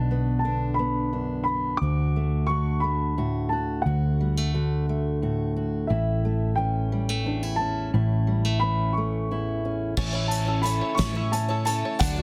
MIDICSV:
0, 0, Header, 1, 8, 480
1, 0, Start_track
1, 0, Tempo, 679502
1, 1280, Time_signature, 6, 3, 24, 8
1, 8632, End_track
2, 0, Start_track
2, 0, Title_t, "Upright piano"
2, 0, Program_c, 0, 0
2, 0, Note_on_c, 0, 81, 84
2, 266, Note_off_c, 0, 81, 0
2, 276, Note_on_c, 0, 81, 69
2, 519, Note_off_c, 0, 81, 0
2, 525, Note_on_c, 0, 83, 72
2, 1004, Note_off_c, 0, 83, 0
2, 1014, Note_on_c, 0, 83, 80
2, 1250, Note_off_c, 0, 83, 0
2, 1252, Note_on_c, 0, 86, 86
2, 1719, Note_off_c, 0, 86, 0
2, 1742, Note_on_c, 0, 85, 88
2, 1979, Note_on_c, 0, 83, 82
2, 2000, Note_off_c, 0, 85, 0
2, 2466, Note_on_c, 0, 81, 76
2, 2487, Note_off_c, 0, 83, 0
2, 2697, Note_on_c, 0, 78, 75
2, 2698, Note_off_c, 0, 81, 0
2, 3223, Note_off_c, 0, 78, 0
2, 4149, Note_on_c, 0, 76, 67
2, 4631, Note_on_c, 0, 79, 79
2, 4653, Note_off_c, 0, 76, 0
2, 5331, Note_off_c, 0, 79, 0
2, 5340, Note_on_c, 0, 81, 78
2, 6072, Note_on_c, 0, 83, 86
2, 6096, Note_off_c, 0, 81, 0
2, 6307, Note_on_c, 0, 85, 65
2, 6327, Note_off_c, 0, 83, 0
2, 6828, Note_off_c, 0, 85, 0
2, 7260, Note_on_c, 0, 81, 77
2, 7494, Note_off_c, 0, 81, 0
2, 7500, Note_on_c, 0, 83, 85
2, 7734, Note_on_c, 0, 85, 87
2, 7759, Note_off_c, 0, 83, 0
2, 7995, Note_off_c, 0, 85, 0
2, 7995, Note_on_c, 0, 81, 84
2, 8221, Note_off_c, 0, 81, 0
2, 8232, Note_on_c, 0, 81, 88
2, 8473, Note_on_c, 0, 78, 82
2, 8483, Note_off_c, 0, 81, 0
2, 8632, Note_off_c, 0, 78, 0
2, 8632, End_track
3, 0, Start_track
3, 0, Title_t, "Twelve-string acoustic guitar"
3, 0, Program_c, 1, 25
3, 7043, Note_on_c, 1, 57, 86
3, 7047, Note_on_c, 1, 61, 72
3, 7048, Note_on_c, 1, 64, 74
3, 7053, Note_on_c, 1, 73, 84
3, 7145, Note_off_c, 1, 73, 0
3, 7153, Note_off_c, 1, 61, 0
3, 7154, Note_on_c, 1, 73, 52
3, 7162, Note_on_c, 1, 61, 39
3, 7163, Note_off_c, 1, 64, 0
3, 7164, Note_off_c, 1, 57, 0
3, 7172, Note_on_c, 1, 64, 36
3, 7375, Note_off_c, 1, 73, 0
3, 7384, Note_on_c, 1, 73, 48
3, 7387, Note_off_c, 1, 61, 0
3, 7391, Note_off_c, 1, 64, 0
3, 7395, Note_on_c, 1, 61, 37
3, 7400, Note_on_c, 1, 64, 39
3, 7503, Note_off_c, 1, 64, 0
3, 7506, Note_off_c, 1, 61, 0
3, 7507, Note_on_c, 1, 57, 55
3, 7509, Note_off_c, 1, 73, 0
3, 7511, Note_on_c, 1, 64, 57
3, 7514, Note_on_c, 1, 61, 55
3, 7518, Note_on_c, 1, 73, 71
3, 7744, Note_off_c, 1, 57, 0
3, 7748, Note_off_c, 1, 61, 0
3, 7749, Note_off_c, 1, 64, 0
3, 7752, Note_on_c, 1, 57, 67
3, 7754, Note_off_c, 1, 73, 0
3, 7756, Note_on_c, 1, 61, 81
3, 7758, Note_on_c, 1, 64, 74
3, 7763, Note_on_c, 1, 73, 80
3, 7858, Note_off_c, 1, 73, 0
3, 7866, Note_off_c, 1, 61, 0
3, 7867, Note_on_c, 1, 73, 43
3, 7871, Note_off_c, 1, 64, 0
3, 7875, Note_on_c, 1, 61, 42
3, 7877, Note_off_c, 1, 57, 0
3, 7879, Note_on_c, 1, 64, 44
3, 8105, Note_off_c, 1, 73, 0
3, 8107, Note_off_c, 1, 61, 0
3, 8113, Note_on_c, 1, 73, 44
3, 8114, Note_off_c, 1, 64, 0
3, 8116, Note_on_c, 1, 61, 41
3, 8122, Note_on_c, 1, 64, 40
3, 8226, Note_off_c, 1, 64, 0
3, 8230, Note_off_c, 1, 61, 0
3, 8230, Note_on_c, 1, 57, 59
3, 8234, Note_off_c, 1, 73, 0
3, 8235, Note_on_c, 1, 64, 54
3, 8238, Note_on_c, 1, 61, 52
3, 8242, Note_on_c, 1, 73, 64
3, 8466, Note_off_c, 1, 57, 0
3, 8469, Note_on_c, 1, 50, 74
3, 8471, Note_off_c, 1, 61, 0
3, 8471, Note_off_c, 1, 64, 0
3, 8471, Note_on_c, 1, 54, 70
3, 8473, Note_off_c, 1, 73, 0
3, 8474, Note_on_c, 1, 62, 77
3, 8474, Note_on_c, 1, 66, 73
3, 8475, Note_on_c, 1, 57, 76
3, 8476, Note_on_c, 1, 74, 73
3, 8581, Note_off_c, 1, 74, 0
3, 8585, Note_off_c, 1, 66, 0
3, 8590, Note_on_c, 1, 74, 44
3, 8593, Note_off_c, 1, 57, 0
3, 8593, Note_off_c, 1, 62, 0
3, 8593, Note_on_c, 1, 66, 45
3, 8594, Note_off_c, 1, 50, 0
3, 8595, Note_off_c, 1, 54, 0
3, 8601, Note_on_c, 1, 57, 40
3, 8601, Note_on_c, 1, 62, 46
3, 8632, Note_off_c, 1, 57, 0
3, 8632, Note_off_c, 1, 62, 0
3, 8632, Note_off_c, 1, 66, 0
3, 8632, Note_off_c, 1, 74, 0
3, 8632, End_track
4, 0, Start_track
4, 0, Title_t, "Five-string banjo"
4, 0, Program_c, 2, 105
4, 7048, Note_on_c, 2, 61, 87
4, 7169, Note_on_c, 2, 64, 68
4, 7272, Note_off_c, 2, 61, 0
4, 7280, Note_on_c, 2, 61, 67
4, 7405, Note_on_c, 2, 69, 61
4, 7517, Note_off_c, 2, 61, 0
4, 7525, Note_on_c, 2, 61, 71
4, 7638, Note_on_c, 2, 73, 68
4, 7646, Note_off_c, 2, 64, 0
4, 7757, Note_off_c, 2, 61, 0
4, 7765, Note_on_c, 2, 61, 68
4, 7883, Note_off_c, 2, 69, 0
4, 7888, Note_on_c, 2, 64, 61
4, 7996, Note_off_c, 2, 61, 0
4, 8004, Note_on_c, 2, 61, 74
4, 8119, Note_off_c, 2, 73, 0
4, 8125, Note_on_c, 2, 69, 70
4, 8238, Note_off_c, 2, 61, 0
4, 8247, Note_on_c, 2, 61, 71
4, 8364, Note_off_c, 2, 64, 0
4, 8372, Note_on_c, 2, 73, 69
4, 8482, Note_off_c, 2, 69, 0
4, 8483, Note_off_c, 2, 61, 0
4, 8483, Note_off_c, 2, 73, 0
4, 8486, Note_on_c, 2, 62, 88
4, 8608, Note_on_c, 2, 66, 61
4, 8632, Note_off_c, 2, 62, 0
4, 8632, Note_off_c, 2, 66, 0
4, 8632, End_track
5, 0, Start_track
5, 0, Title_t, "Steel-string acoustic guitar"
5, 0, Program_c, 3, 25
5, 0, Note_on_c, 3, 47, 65
5, 0, Note_on_c, 3, 50, 56
5, 0, Note_on_c, 3, 62, 60
5, 77, Note_on_c, 3, 59, 47
5, 304, Note_off_c, 3, 50, 0
5, 312, Note_on_c, 3, 50, 54
5, 313, Note_off_c, 3, 47, 0
5, 314, Note_off_c, 3, 62, 0
5, 317, Note_on_c, 3, 62, 57
5, 549, Note_off_c, 3, 59, 0
5, 558, Note_on_c, 3, 59, 55
5, 795, Note_off_c, 3, 62, 0
5, 795, Note_on_c, 3, 42, 55
5, 798, Note_on_c, 3, 62, 49
5, 1040, Note_off_c, 3, 62, 0
5, 1043, Note_on_c, 3, 62, 50
5, 1249, Note_off_c, 3, 42, 0
5, 1251, Note_off_c, 3, 59, 0
5, 1284, Note_on_c, 3, 38, 60
5, 1286, Note_off_c, 3, 62, 0
5, 1289, Note_on_c, 3, 66, 62
5, 1527, Note_on_c, 3, 57, 46
5, 1757, Note_off_c, 3, 50, 0
5, 1760, Note_off_c, 3, 66, 0
5, 1760, Note_on_c, 3, 50, 50
5, 1763, Note_on_c, 3, 66, 60
5, 2001, Note_off_c, 3, 57, 0
5, 2004, Note_on_c, 3, 57, 49
5, 2237, Note_off_c, 3, 66, 0
5, 2242, Note_on_c, 3, 45, 53
5, 2246, Note_on_c, 3, 66, 57
5, 2480, Note_off_c, 3, 66, 0
5, 2489, Note_on_c, 3, 66, 56
5, 2698, Note_off_c, 3, 66, 0
5, 2714, Note_off_c, 3, 38, 0
5, 2723, Note_on_c, 3, 38, 66
5, 2724, Note_off_c, 3, 45, 0
5, 2729, Note_on_c, 3, 66, 60
5, 2968, Note_off_c, 3, 57, 0
5, 2970, Note_on_c, 3, 55, 49
5, 3089, Note_off_c, 3, 55, 0
5, 3089, Note_on_c, 3, 57, 34
5, 3199, Note_off_c, 3, 50, 0
5, 3203, Note_off_c, 3, 66, 0
5, 3207, Note_on_c, 3, 50, 55
5, 3211, Note_on_c, 3, 66, 56
5, 3447, Note_off_c, 3, 57, 0
5, 3456, Note_on_c, 3, 57, 51
5, 3685, Note_off_c, 3, 66, 0
5, 3689, Note_on_c, 3, 45, 48
5, 3694, Note_on_c, 3, 66, 51
5, 3922, Note_off_c, 3, 66, 0
5, 3930, Note_on_c, 3, 66, 54
5, 4140, Note_off_c, 3, 66, 0
5, 4157, Note_off_c, 3, 45, 0
5, 4165, Note_on_c, 3, 45, 62
5, 4166, Note_off_c, 3, 38, 0
5, 4168, Note_off_c, 3, 50, 0
5, 4168, Note_on_c, 3, 64, 61
5, 4411, Note_off_c, 3, 57, 0
5, 4414, Note_on_c, 3, 57, 46
5, 4642, Note_on_c, 3, 52, 51
5, 4648, Note_on_c, 3, 61, 50
5, 4887, Note_off_c, 3, 57, 0
5, 4889, Note_on_c, 3, 55, 55
5, 5007, Note_off_c, 3, 55, 0
5, 5007, Note_on_c, 3, 57, 45
5, 5126, Note_off_c, 3, 64, 0
5, 5127, Note_off_c, 3, 45, 0
5, 5128, Note_on_c, 3, 40, 48
5, 5128, Note_on_c, 3, 62, 51
5, 5247, Note_off_c, 3, 62, 0
5, 5247, Note_on_c, 3, 64, 52
5, 5369, Note_off_c, 3, 61, 0
5, 5372, Note_on_c, 3, 61, 53
5, 5579, Note_off_c, 3, 40, 0
5, 5601, Note_off_c, 3, 64, 0
5, 5606, Note_on_c, 3, 45, 71
5, 5607, Note_off_c, 3, 57, 0
5, 5611, Note_on_c, 3, 64, 61
5, 5843, Note_on_c, 3, 55, 51
5, 5864, Note_off_c, 3, 61, 0
5, 5966, Note_off_c, 3, 55, 0
5, 5966, Note_on_c, 3, 57, 38
5, 6086, Note_off_c, 3, 52, 0
5, 6088, Note_on_c, 3, 52, 53
5, 6095, Note_on_c, 3, 61, 56
5, 6326, Note_off_c, 3, 57, 0
5, 6338, Note_on_c, 3, 57, 54
5, 6566, Note_off_c, 3, 45, 0
5, 6567, Note_off_c, 3, 64, 0
5, 6576, Note_on_c, 3, 40, 50
5, 6579, Note_on_c, 3, 64, 56
5, 6807, Note_off_c, 3, 61, 0
5, 6816, Note_on_c, 3, 61, 49
5, 7017, Note_off_c, 3, 52, 0
5, 7022, Note_off_c, 3, 40, 0
5, 7022, Note_off_c, 3, 61, 0
5, 7022, Note_off_c, 3, 64, 0
5, 7023, Note_off_c, 3, 57, 0
5, 8632, End_track
6, 0, Start_track
6, 0, Title_t, "Brass ensemble"
6, 0, Program_c, 4, 61
6, 7044, Note_on_c, 4, 49, 75
6, 7045, Note_on_c, 4, 64, 76
6, 7049, Note_on_c, 4, 52, 64
6, 7050, Note_on_c, 4, 57, 71
6, 8466, Note_off_c, 4, 49, 0
6, 8466, Note_off_c, 4, 64, 0
6, 8468, Note_off_c, 4, 52, 0
6, 8479, Note_on_c, 4, 50, 74
6, 8481, Note_on_c, 4, 54, 70
6, 8484, Note_on_c, 4, 66, 80
6, 8632, Note_off_c, 4, 50, 0
6, 8632, Note_off_c, 4, 54, 0
6, 8632, Note_off_c, 4, 57, 0
6, 8632, Note_off_c, 4, 66, 0
6, 8632, End_track
7, 0, Start_track
7, 0, Title_t, "Picked electric bass"
7, 0, Program_c, 5, 34
7, 0, Note_on_c, 5, 35, 63
7, 1250, Note_off_c, 5, 35, 0
7, 1281, Note_on_c, 5, 38, 66
7, 2696, Note_off_c, 5, 38, 0
7, 2724, Note_on_c, 5, 38, 71
7, 4138, Note_off_c, 5, 38, 0
7, 4169, Note_on_c, 5, 33, 63
7, 5580, Note_off_c, 5, 33, 0
7, 5607, Note_on_c, 5, 33, 65
7, 7017, Note_off_c, 5, 33, 0
7, 7044, Note_on_c, 5, 33, 81
7, 7632, Note_off_c, 5, 33, 0
7, 7761, Note_on_c, 5, 45, 65
7, 8349, Note_off_c, 5, 45, 0
7, 8481, Note_on_c, 5, 38, 82
7, 8632, Note_off_c, 5, 38, 0
7, 8632, End_track
8, 0, Start_track
8, 0, Title_t, "Drums"
8, 7043, Note_on_c, 9, 49, 101
8, 7045, Note_on_c, 9, 36, 103
8, 7114, Note_off_c, 9, 49, 0
8, 7115, Note_off_c, 9, 36, 0
8, 7284, Note_on_c, 9, 42, 70
8, 7355, Note_off_c, 9, 42, 0
8, 7525, Note_on_c, 9, 42, 54
8, 7596, Note_off_c, 9, 42, 0
8, 7763, Note_on_c, 9, 36, 67
8, 7763, Note_on_c, 9, 38, 107
8, 7763, Note_on_c, 9, 42, 68
8, 7833, Note_off_c, 9, 36, 0
8, 7834, Note_off_c, 9, 38, 0
8, 7834, Note_off_c, 9, 42, 0
8, 8001, Note_on_c, 9, 42, 57
8, 8072, Note_off_c, 9, 42, 0
8, 8240, Note_on_c, 9, 42, 54
8, 8311, Note_off_c, 9, 42, 0
8, 8480, Note_on_c, 9, 42, 79
8, 8481, Note_on_c, 9, 36, 112
8, 8551, Note_off_c, 9, 36, 0
8, 8551, Note_off_c, 9, 42, 0
8, 8632, End_track
0, 0, End_of_file